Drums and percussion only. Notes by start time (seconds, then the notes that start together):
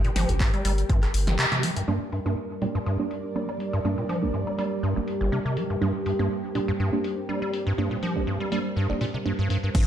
0.04 closed hi-hat
0.16 snare, open hi-hat
0.29 closed hi-hat
0.40 kick, clap, closed hi-hat
0.54 closed hi-hat
0.65 open hi-hat
0.78 closed hi-hat
0.89 kick, closed hi-hat
1.03 cross-stick, clap, closed hi-hat
1.14 open hi-hat
1.27 snare, closed hi-hat
1.39 clap, closed hi-hat
1.52 snare, closed hi-hat
1.63 snare, open hi-hat
1.76 closed hi-hat
2.12 open hi-hat
2.62 open hi-hat
3.11 open hi-hat
3.60 open hi-hat
4.09 open hi-hat
4.59 open hi-hat
5.08 open hi-hat
5.57 open hi-hat
6.06 open hi-hat
6.55 open hi-hat
7.04 open hi-hat
7.54 open hi-hat
8.03 open hi-hat
8.52 open hi-hat
9.01 open hi-hat
9.50 open hi-hat
9.75 kick, closed hi-hat, crash